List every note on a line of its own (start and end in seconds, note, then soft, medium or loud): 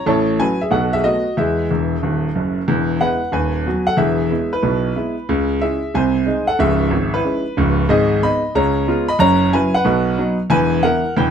0.06 0.34 A1 medium
0.06 0.34 A2 loud
0.06 0.38 C#5 medium
0.06 0.40 A5 medium
0.39 0.57 F#3 soft
0.39 0.57 C#4 soft
0.39 0.58 F#4 soft
0.39 0.60 B4 medium
0.39 0.61 G#5 medium
0.61 0.72 G#4 medium
0.61 0.72 E5 medium
0.71 0.99 B1 medium
0.71 0.99 B2 medium
0.71 0.92 A4 medium
0.71 0.93 F#5 medium
0.93 1.04 G#4 medium
0.93 1.04 E5 loud
1.04 1.22 A3 soft
1.04 1.22 B3 soft
1.04 1.35 F#4 medium
1.04 1.37 D#5 medium
1.37 1.63 E2 medium
1.37 1.64 G#3 medium
1.37 2.53 G#4 medium
1.37 2.57 E5 medium
1.71 1.95 E1 medium
1.71 1.95 E2 medium
2.03 2.27 D#1 medium
2.03 2.27 D#2 medium
2.35 2.60 F#1 medium
2.35 2.60 F#2 medium
2.68 2.95 E1 medium
2.68 2.96 E2 medium
3.00 3.18 G#3 soft
3.00 3.18 B3 soft
3.00 3.19 E4 soft
3.00 3.31 B4 medium
3.00 3.33 F#5 medium
3.32 3.60 D#1 medium
3.32 3.60 D#2 medium
3.32 3.84 B4 medium
3.32 3.87 G#5 medium
3.66 3.84 F#3 medium
3.66 3.84 B3 soft
3.66 3.84 F#4 medium
3.87 3.98 A4 medium
3.87 3.98 F#5 medium
3.97 4.25 E1 medium
3.97 4.25 E2 medium
3.97 4.49 G#4 medium
3.97 4.52 E5 medium
4.31 4.49 G#3 soft
4.31 4.49 B3 soft
4.31 4.49 E4 soft
4.53 4.95 E4 medium
4.53 5.29 B4 medium
4.63 4.91 B1 medium
4.63 4.91 B2 medium
4.96 5.14 G#3 soft
4.96 5.14 B3 medium
4.96 5.14 E4 medium
5.29 5.56 C#2 medium
5.29 5.56 C#3 medium
5.61 5.79 G#3 soft
5.61 5.79 C#4 soft
5.61 5.79 E4 medium
5.61 5.92 G#4 medium
5.61 5.94 E5 medium
5.94 6.22 C2 medium
5.94 6.22 C3 medium
5.94 6.45 C5 medium
5.94 6.48 G#5 medium
6.26 6.44 G#3 medium
6.26 6.44 D#4 medium
6.47 6.59 A4 medium
6.47 6.59 F#5 medium
6.59 6.85 C#1 medium
6.59 6.85 C#2 medium
6.59 7.10 G#4 medium
6.59 7.13 E5 loud
6.91 7.17 G#1 medium
7.14 7.23 E4 medium
7.14 7.89 B4 medium
7.25 7.43 G#3 soft
7.25 7.42 C#4 soft
7.25 7.42 E4 soft
7.57 7.83 C#1 medium
7.57 7.83 C#2 medium
7.89 8.17 G#1 medium
7.89 8.17 G#2 loud
7.89 8.20 G#4 medium
7.89 8.22 D#5 loud
8.22 8.40 G#3 medium
8.22 8.40 B3 medium
8.22 8.41 D#4 medium
8.22 8.53 D#5 medium
8.22 8.55 B5 loud
8.55 8.82 C#2 medium
8.55 8.82 C#3 medium
8.55 9.06 C#5 medium
8.55 9.09 A#5 medium
8.88 9.05 G#3 medium
8.88 9.05 B3 medium
8.88 9.06 F4 medium
9.08 9.19 D#5 medium
9.08 9.19 B5 loud
9.19 9.47 F#1 medium
9.19 9.47 F#2 medium
9.19 9.50 C#5 medium
9.19 9.52 A#5 loud
9.53 9.70 F#3 medium
9.53 9.70 C#4 medium
9.53 9.71 E4 medium
9.53 9.73 B4 medium
9.53 9.74 G#5 medium
9.74 10.36 B4 medium
9.74 10.39 F#5 loud
9.85 10.13 B1 medium
9.85 10.12 B2 medium
10.18 10.36 F#3 medium
10.18 10.36 B3 medium
10.18 10.36 D#4 medium
10.50 10.77 E1 medium
10.50 10.77 E2 medium
10.50 10.81 B4 medium
10.50 10.82 G#5 loud
10.83 11.00 E3 soft
10.83 11.01 B3 medium
10.83 11.01 E4 medium
10.83 11.14 A#4 medium
10.83 11.15 F#5 medium
11.16 11.31 E1 medium
11.16 11.31 E2 medium
11.16 11.31 B4 medium
11.16 11.31 G5 medium